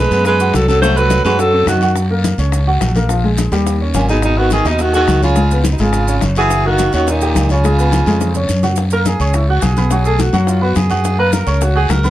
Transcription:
Already playing: G#3
0.00 B4
0.11 F#2 B3 B4, high conga, short guiro, maracas
0.25 G#3 B4, high bongo, high conga, long guiro, maracas
0.40 F#4 F#5, high conga, maracas
0.54 C2 F#3 A4, high bongo, low bongo, high conga, short guiro, maracas
0.68 F#3 C4 A4 C5, high conga, short guiro, maracas
0.82 F#3 A3 F#4 C5, high bongo, high conga, long guiro, maracas
0.96 F#3 A3 A4 B4, high bongo, high conga, maracas
1.10 high bongo, high conga, short guiro, maracas
1.24 F#2 F#3 G#3 F#4 B4, high conga, short guiro, maracas
1.39 F#3 A4, high bongo, high conga, long guiro, maracas
1.53 C4 C5, high conga
1.66 F#2 D#3 F#4, high bongo, low bongo, high conga, short guiro, maracas
1.81 F#4 F#5, high bongo, short guiro, maracas
1.96 high bongo, high conga, long guiro, maracas
2.10 A#3 A#4, high conga
2.24 high bongo, high conga, short guiro, maracas
2.38 C#2 C#4 C#5, high conga, short guiro, maracas
2.52 high bongo, high conga, long guiro, maracas
2.67 F#4 F#5, high conga
2.81 A#1, high bongo, low bongo, high conga, short guiro, maracas
2.95 A#3 A#4, high conga, short guiro, maracas
3.09 F3 F4, high bongo, high conga, long guiro, maracas
3.24 G#3 G#4, high bongo, high conga
3.38 high bongo, high conga, short guiro, maracas
3.52 D#2 G3 G4, high bongo, high conga, short guiro, maracas
3.66 high bongo, high conga, long guiro, maracas
3.81 C#4 C#5, high conga
3.94 G#1 A#2 C#4, high bongo, low bongo, high conga, short guiro, maracas
4.09 B2 D#4 G#4 G#5, high bongo, short guiro, maracas
4.22 B2 D#4, high bongo, high conga, long guiro, maracas
4.37 D#3 B3 F#4 B4, high conga
4.50 D#3 G#4, high bongo, high conga, short guiro, maracas
4.65 D#2 B2 D#4 D#5, high conga, short guiro, maracas
4.79 D#3 F#4, high bongo, high conga, long guiro, maracas
4.93 D#3 F#4 G#4 G#5, high conga, maracas
5.07 C#2, high bongo, low bongo, high conga, short guiro, maracas
5.22 C#3 C#4 F4 C#5, high conga, short guiro, maracas
5.36 G#3 G#4, high bongo, high conga, long guiro, maracas
5.50 B3 B4, high bongo, high conga, maracas
5.64 high bongo, high conga, short guiro, maracas
5.72 B2 D#4
5.78 G#1 C#3 G#3 F4 G#4, high bongo, high conga, short guiro, maracas
5.93 high bongo, high conga, long guiro, maracas
6.08 C#4 C#5, high conga, maracas
6.21 F#1, high bongo, low bongo, high conga, short guiro, maracas
6.35 E3 F#4 G#4 F#5, high bongo, short guiro, maracas
6.50 high bongo, high conga, long guiro, maracas
6.65 D#3 A#3 F#4 A#4, high conga
6.78 high bongo, high conga, short guiro, maracas
6.92 D#2 D#3 C#4 F#4 C#5, high conga, short guiro, maracas
7.07 A#2 D#4, high bongo, high conga, long guiro, maracas
7.21 G4 G5, high conga, maracas
7.35 C#2, high bongo, low bongo, high conga, short guiro, maracas
7.49 C#3 C#4 F4 C#5, high conga, short guiro, maracas
7.64 G#3 G#4, high bongo, high conga, long guiro, maracas
7.78 B3 B4, high bongo, high conga, maracas
7.92 high bongo, high conga, short guiro, maracas
8.06 F2 G#3 G#4, high conga, short guiro, maracas
8.21 high bongo, high conga, long guiro, maracas
8.34 C#4 C#5, low bongo, high conga, maracas
8.49 F#2, high conga, short guiro, maracas
8.63 F#4 F#5, low bongo, short guiro, maracas
8.76 high bongo, high conga, long guiro, maracas
8.90 A#3 A#4 A#5, high conga, maracas
9.05 G#4, high bongo, high conga, short guiro, maracas
9.20 C#2 C#4 C#5 C#6, high conga, short guiro, maracas
9.33 E4, high bongo, high conga, long guiro, maracas
9.48 F#4 F#5 F#6, high conga
9.62 B1 G#4, high bongo, low bongo, high conga, short guiro, maracas
9.77 B3 B4 B5, high conga, short guiro, maracas
9.90 F#3 F#4 F#5, high bongo, high conga, long guiro, maracas
10.05 A3 G#4 A4 A5, high bongo, high conga, maracas
10.19 F#4, high bongo, high conga, short guiro, maracas
10.33 F#2 F#3 F#4 F#5, high bongo, short guiro, maracas
10.47 F4, high bongo, high conga, long guiro, maracas
10.61 B3 F#4 B4 B5, high conga
10.75 F#2 G#4, high bongo, low bongo, high conga, short guiro, maracas
10.90 F#4 F#5 F#6, high bongo, high conga, short guiro, maracas
11.04 high bongo, high conga, long guiro, maracas
11.18 A#3 A#4 B4 A#5, high conga
11.32 A#4, high bongo, high conga, short guiro, maracas
11.46 C#2 C#4 C#5 C#6, high conga, short guiro, maracas
11.61 F#4, high bongo, high conga, long guiro, maracas
11.75 F#4 G#4 F#5 F#6, high conga
11.89 C#2 A#4, high bongo, low bongo, high conga, short guiro, maracas
12.03 B3 B4 B5, high conga, short guiro, maracas

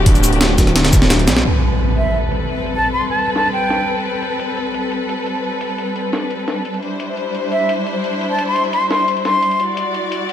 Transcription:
Already playing: D1 D4 F#4 G4
0.06 kick, closed hi-hat
0.15 closed hi-hat, cabasa
0.23 closed hi-hat, cabasa
0.33 closed hi-hat
0.41 snare, closed hi-hat
0.58 D1, kick, snare, closed hi-hat, cabasa
0.67 cross-stick, closed hi-hat
0.76 snare, closed hi-hat
0.85 snare, closed hi-hat
0.93 kick, snare, closed hi-hat, cabasa
1.02 snare
1.10 snare, closed hi-hat
1.19 closed hi-hat
1.28 B1, snare, closed hi-hat, cabasa
1.37 snare
1.45 G3 C4 A4 B4, closed hi-hat, crash, impact
1.62 closed hi-hat
1.80 closed hi-hat
1.97 E5, closed hi-hat
2.14 closed hi-hat
2.32 closed hi-hat
2.49 closed hi-hat
2.58 closed hi-hat
2.66 closed hi-hat
2.75 A5
2.84 closed hi-hat
2.93 C6, closed hi-hat
3.01 closed hi-hat
3.10 A5, closed hi-hat
3.18 closed hi-hat
3.36 A5, snare, closed hi-hat
3.53 G5, closed hi-hat
3.62 closed hi-hat
3.70 snare, closed hi-hat
3.88 closed hi-hat
3.97 closed hi-hat
4.05 closed hi-hat
4.22 closed hi-hat
4.40 closed hi-hat
4.57 closed hi-hat
4.74 closed hi-hat
4.92 closed hi-hat
5.09 closed hi-hat
5.26 closed hi-hat
5.35 closed hi-hat
5.44 closed hi-hat
5.61 closed hi-hat
5.70 closed hi-hat
5.78 closed hi-hat
5.87 closed hi-hat
5.96 closed hi-hat
6.13 snare, closed hi-hat
6.30 closed hi-hat
6.39 closed hi-hat
6.48 snare, closed hi-hat
6.65 closed hi-hat
6.74 closed hi-hat
6.83 D4 E4 C5, closed hi-hat
7.00 closed hi-hat
7.17 closed hi-hat
7.35 closed hi-hat
7.52 E5, closed hi-hat
7.69 closed hi-hat
7.87 closed hi-hat
8.04 closed hi-hat
8.13 closed hi-hat
8.21 closed hi-hat
8.30 A5
8.39 closed hi-hat
8.47 C6, closed hi-hat
8.56 closed hi-hat
8.65 closed hi-hat
8.73 C6, closed hi-hat
8.91 C6, snare, closed hi-hat
9.08 closed hi-hat
9.17 closed hi-hat
9.25 C6, snare, closed hi-hat
9.43 closed hi-hat
9.51 closed hi-hat
9.60 E4 F#4 D5, closed hi-hat
9.77 closed hi-hat
9.94 closed hi-hat
10.12 closed hi-hat
10.29 closed hi-hat

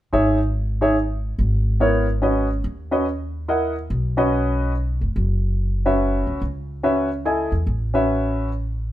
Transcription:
0.13 G#1 D#4 G#4 C#5 E5
0.81 D#4 G#4 C#5 E5
1.39 G#1
1.80 B3 E4 A#4 C#5
2.22 C#4 F#4 B4 D#5
2.64 D#2
2.91 C#4 F#4 B4 D#5
3.48 E4 A#4 D#5 F#5
3.90 B1
4.17 C#4 F#4 B4 D#5
5.01 F1
5.16 F#1
5.86 C#4 F#4 B4 E5
6.27 C#2
6.42 C#2
6.83 C#4 F#4 B4 E5
7.25 E4 A4 D#5 G#5
7.52 E2
7.67 A1
7.94 C#4 F#4 B4 E5

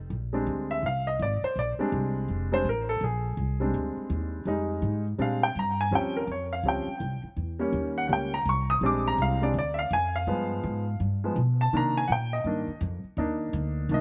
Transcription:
0.10 A#1
0.33 G3 G#3 C4 D4
0.47 D2
0.71 E5
0.83 C2 F5
1.07 D#5
1.19 G#1 D5
1.42 C5, muted upright bass stroke
1.56 A#1 D5
1.79 G3 G#3 C4 D4, muted upright bass stroke
1.92 C2
2.28 F1
2.52 G3 G#3 C4 D4 C5
2.64 A1
2.69 A#4
2.89 A4
3.01 A#1 G#4
3.37 C2
3.60 G3 G#3 C4 D4
3.74 D2
3.97 muted upright bass stroke
4.10 D#2
4.45 F2 G3 G#3 D#4
4.82 G#2
5.18 A#2 G3 G#3 C4 D4 F5
5.43 G5
5.55 G2 A#5
5.81 G#5
5.91 D#2 F3 G3 C4 C#4
5.95 G5
6.17 A#4
6.27 F2
6.32 C#5
6.53 F5
6.63 C#2 F3 G3 C4 C#4
6.68 G5
6.87 muted upright bass stroke
7.00 C2
7.23 muted upright bass stroke
7.36 E2
7.59 G3 A#3 C#4
7.72 D#2
7.98 F#5
8.08 C#2 G3 A#3 C#4 F#5
8.13 G5
8.34 A#5
8.45 C2 C#6
8.70 D#6
8.81 A#1 G3 G#3 C4 D4
8.86 D6
9.08 A#5
9.18 C2 F5
9.42 G3 G#3 C4 D4 D5
9.54 D2
9.59 D5
9.74 E5
9.79 F5
9.91 F2 G#5
10.16 F5
10.27 G2 F3 G#3 B3
10.64 G#2
11.00 G2
11.24 F3 G#3 B3
11.36 B2
11.61 A5
11.73 C3 D#3 A#3 D4 A#5
11.97 G#5
12.08 A#2 F#5
12.12 G5
12.33 D#5
12.44 G2 D#3 A#3 D4
12.68 muted upright bass stroke
12.81 F2
13.04 muted upright bass stroke
13.17 D#2 A#3 D4 D#4
13.53 D2
13.89 C2 D#3 A#3 D4
13.94 D#5

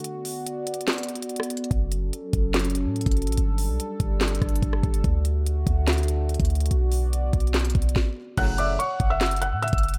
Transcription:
Already playing: F#4
0.04 B3 D5, closed hi-hat
0.25 open hi-hat
0.47 closed hi-hat
0.67 closed hi-hat
0.74 closed hi-hat
0.81 closed hi-hat
0.88 snare, clap, closed hi-hat
0.93 closed hi-hat
0.98 closed hi-hat
1.03 closed hi-hat
1.09 closed hi-hat
1.15 closed hi-hat
1.22 closed hi-hat
1.29 closed hi-hat
1.36 cross-stick, closed hi-hat
1.43 closed hi-hat
1.50 closed hi-hat
1.57 closed hi-hat
1.64 closed hi-hat
1.71 F#1 F#3 C#4 A4, kick, closed hi-hat
1.92 closed hi-hat
2.13 closed hi-hat
2.33 F#1, kick, closed hi-hat
2.54 snare, clap, closed hi-hat
2.59 closed hi-hat
2.65 closed hi-hat
2.70 closed hi-hat
2.75 closed hi-hat
2.85 A2
2.96 closed hi-hat
3.01 closed hi-hat
3.06 F#1, kick, closed hi-hat
3.11 closed hi-hat
3.17 closed hi-hat
3.22 closed hi-hat
3.27 A1, closed hi-hat
3.32 closed hi-hat
3.37 G1 G3 D4, closed hi-hat
3.58 open hi-hat
3.69 B1
3.80 closed hi-hat
4.00 G1, kick, closed hi-hat
4.21 snare, clap, closed hi-hat
4.28 closed hi-hat
4.35 closed hi-hat
4.42 G1, kick, cross-stick, closed hi-hat
4.49 closed hi-hat
4.56 closed hi-hat
4.62 G1, kick, closed hi-hat
4.73 cross-stick
4.83 G1, kick, closed hi-hat
4.94 closed hi-hat
5.04 D2 D3 A3 F#4, kick, closed hi-hat
5.25 closed hi-hat
5.46 closed hi-hat
5.67 D2, kick, closed hi-hat
5.88 snare, clap, closed hi-hat
5.93 closed hi-hat
5.98 closed hi-hat
6.03 closed hi-hat
6.08 closed hi-hat
6.29 closed hi-hat
6.34 closed hi-hat
6.40 D2, kick, closed hi-hat
6.45 closed hi-hat
6.50 closed hi-hat
6.55 closed hi-hat
6.60 closed hi-hat
6.66 closed hi-hat
6.71 B1 B3 F#4 D5, closed hi-hat
6.92 open hi-hat
7.13 closed hi-hat
7.33 B1, kick, closed hi-hat
7.40 closed hi-hat
7.47 closed hi-hat
7.54 snare, clap, closed hi-hat
7.59 closed hi-hat
7.65 closed hi-hat
7.70 closed hi-hat
7.75 B1, kick, closed hi-hat
7.82 closed hi-hat
7.89 closed hi-hat
7.96 kick, snare
8.37 F#1 A2 C#3 F#3 F#5 F#6, kick, closed hi-hat, crash
8.58 D5 E5 D6, closed hi-hat
8.79 C#5 F#5 C#6, closed hi-hat
9.00 F#1, kick, closed hi-hat
9.10 E5 E6
9.21 snare, clap, closed hi-hat
9.26 closed hi-hat
9.31 closed hi-hat
9.36 closed hi-hat
9.42 F#5 F#6, closed hi-hat
9.52 A2
9.62 E5 E6, closed hi-hat
9.68 closed hi-hat
9.73 F#1, kick, closed hi-hat
9.78 closed hi-hat
9.83 closed hi-hat
9.88 closed hi-hat
9.94 A1, closed hi-hat

